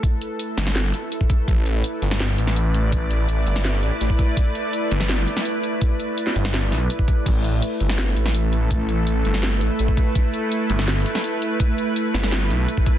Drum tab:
CC |----------------|----------------|----------------|----------------|
HH |x-x-x-x-x-x-x-x-|x-x-x-x-x-x-x-x-|x-x-x-x-x-x-x-x-|x-x-x-x-x-x-x-x-|
SD |------ooo-------|-------oo--o----|-------oo-------|-------oo--o----|
BD |o------------oo-|o---------------|o------------oo-|o---------------|

CC |----------------|x---------------|----------------|----------------|
HH |x-x-x-x-x-x-x-x-|x-x-x-x-x-x-x-x-|x-x-x-x-x-x-x-x-|x-x-x-x-x-x-x-x-|
SD |-----o-oo-o-----|-------oo--o----|-------oo-------|-------oo--o----|
BD |o------------oo-|o---------------|o------------oo-|o---------------|

CC |----------------|
HH |x-x-x-x-x-x-x-x-|
SD |------ooo-------|
BD |o------------oo-|